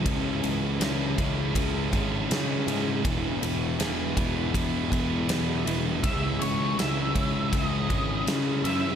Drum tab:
RD |xxxxxxxx|xxxxxxxx|xxxxxxxx|
SD |--o---o-|--o---o-|--o---o-|
BD |o--ooo--|o--ooo--|o--ooo--|